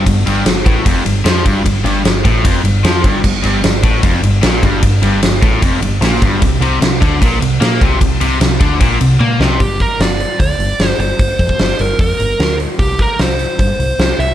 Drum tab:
CC |----------------|----------------|x---------------|----------------|
RD |x-x-x-x-x-x-x-x-|x-x-x-x-x-x-x-x-|--x-x-x-x-x-x-x-|x-x-x-x-x-x-x-x-|
HH |----------------|----------------|----------------|----------------|
SD |----o-------o---|----o-------o---|----o-------o---|----o-------o---|
T1 |----------------|----------------|----------------|----------------|
BD |o-----o-o-----o-|o-----o-o-----o-|o-----o-o-----o-|o-----o-o-----o-|

CC |----------------|----------------|----------------|----------------|
RD |x-x-x-x-x-x-x-x-|x-x-x-x-x-x-----|----------------|----------------|
HH |----------------|----------------|o-o-o-o-o-o-o-o-|o-o-o-o-o-o-o-o-|
SD |----o-------o---|----o---------o-|----o-------o---|----o-------o---|
T1 |----------------|------------o---|----------------|----------------|
BD |o-----o-o-----o-|o-----o-o-------|o-o-----o-------|o-oo----o-------|

CC |----------------|
RD |----------------|
HH |o-o-o-o-o-o-o-o-|
SD |----o-------o---|
T1 |----------------|
BD |o-o-----o-------|